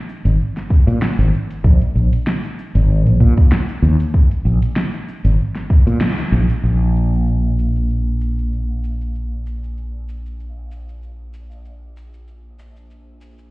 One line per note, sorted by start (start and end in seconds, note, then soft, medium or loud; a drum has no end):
0.09 cabasa medium
0.25 0.35 G#1 medium
0.25 open hi-hat medium
0.25 cabasa soft
0.40 cabasa soft
0.57 snare soft
0.57 open hi-hat soft
0.70 kick loud
0.70 cabasa medium
0.87 0.98 A#2 medium
0.87 open hi-hat medium
0.87 cabasa soft
1.02 snare loud
1.02 cabasa soft
1.19 1.29 G#1 medium
1.19 open hi-hat soft
1.34 cabasa medium
1.51 open hi-hat medium
1.51 cabasa soft
1.64 1.77 A#1 loud
1.64 kick loud
1.64 cabasa soft
1.82 open hi-hat soft
1.95 2.08 A#1 medium
1.95 cabasa medium
2.13 open hi-hat medium
2.13 cabasa soft
2.27 snare medium
2.27 cabasa soft
2.44 open hi-hat soft
2.59 cabasa medium
2.75 3.06 G#1 medium
2.75 open hi-hat medium
2.75 cabasa soft
2.90 cabasa soft
3.06 3.17 A#1 medium
3.06 open hi-hat soft
3.20 3.33 A#2 medium
3.20 kick medium
3.20 cabasa medium
3.37 kick medium
3.37 open hi-hat medium
3.37 cabasa soft
3.52 snare loud
3.52 cabasa soft
3.69 open hi-hat soft
3.82 3.95 D#2 medium
3.82 cabasa medium
4.00 open hi-hat medium
4.00 cabasa soft
4.14 kick loud
4.14 cabasa soft
4.31 open hi-hat soft
4.45 4.58 A#1 medium
4.45 cabasa medium
4.62 open hi-hat medium
4.62 cabasa soft
4.76 snare loud
4.76 cabasa soft
4.94 open hi-hat soft
5.09 cabasa medium
5.25 5.35 G#1 medium
5.25 open hi-hat medium
5.25 cabasa soft
5.39 cabasa soft
5.55 snare soft
5.55 open hi-hat soft
5.70 kick loud
5.70 cabasa medium
5.87 5.98 A#2 loud
5.87 open hi-hat medium
5.87 cabasa soft
6.01 snare loud
6.01 cabasa soft
6.18 open hi-hat medium
6.32 6.45 A#1 loud
6.32 cabasa medium
6.50 open hi-hat medium
6.50 cabasa soft
6.64 13.51 A#1 medium
6.64 cabasa soft
6.96 cabasa medium
7.13 cabasa soft
7.27 cabasa soft
7.59 cabasa medium
7.76 cabasa soft
7.90 cabasa soft
8.21 cabasa medium
8.38 cabasa soft
8.53 cabasa soft
8.84 cabasa medium
9.01 cabasa soft
9.15 cabasa soft
9.46 cabasa medium
9.64 cabasa soft
9.77 cabasa soft
10.09 cabasa medium
10.26 cabasa soft
10.40 cabasa soft
10.71 cabasa medium
10.89 cabasa soft
11.03 cabasa soft
11.34 cabasa medium
11.51 cabasa soft
11.65 cabasa soft
11.97 cabasa medium
12.14 cabasa soft
12.28 cabasa soft
12.59 cabasa medium
12.76 cabasa soft
12.90 cabasa soft
13.21 cabasa medium
13.38 cabasa soft